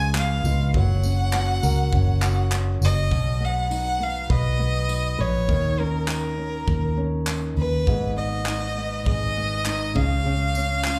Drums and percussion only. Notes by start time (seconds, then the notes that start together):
0.14 clap, tambourine
0.45 tambourine
0.74 kick
1.03 tambourine
1.33 clap, tambourine
1.63 tambourine
1.93 kick
2.22 clap, tambourine
2.51 clap, tambourine
2.82 tambourine
3.11 kick
3.71 tambourine
4.30 kick
4.89 tambourine
5.49 kick
6.08 clap, tambourine
6.68 kick
7.26 clap, tambourine
7.87 kick
8.46 clap, tambourine
9.06 kick
9.65 clap, tambourine
9.96 kick
10.55 tambourine
10.85 clap, tambourine